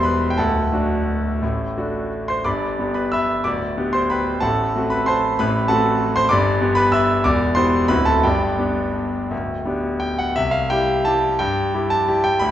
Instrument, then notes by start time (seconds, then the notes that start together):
grand piano
Already playing: E1 E2 G3 B3 E4 C5 D5 C6 D6
0.03 B4 B5
0.30 G5
0.38 D1 D2 A4 F#5 A5
0.73 A3 D4 F#4
1.42 A1 A2
1.77 A3 D4 F#4
2.28 C5 C6
2.45 G1 G2 D5 B5 D6
2.79 B3 D4 G4
2.94 B4 B5
3.12 E5 B5 E6
3.44 D1 D2 D5 B5 D6
3.78 B3 D4 G4
3.93 C5 C6
4.10 B4 G5 B5
4.40 A1 A2 A4 F#5 A5
4.76 A3 C4 F#4
4.90 B4 B5
5.06 C5 A5 C6
5.39 A1 A2 B4 B5
5.68 A3 C4 F#4 A4 F#5 A5
6.16 C5 C6
6.29 G1 G2 D5 B5 D6
6.61 B3 D4 G4
6.75 B4 B5
6.92 E5 B5 E6
7.24 E1 E2 D5 D6
7.55 B3 E4 G4 C5 C6
7.88 D1 D2 C4 E4 F#4 B4 B5
8.05 A4 A5
8.23 G1 G2 G4 D5 G5
8.58 B3 D4 G4
9.31 D1 D2
9.65 B3 D4 G4
10.00 G5
10.19 F#5
10.36 C2 E5
10.51 F5
10.70 G3 E4 G4 G5
11.05 G3 E4 G4 A5
11.39 G2 G5
11.74 G3 E4 G4
11.90 A5
12.08 G3 E4 G4
12.24 G5
12.39 D2 B5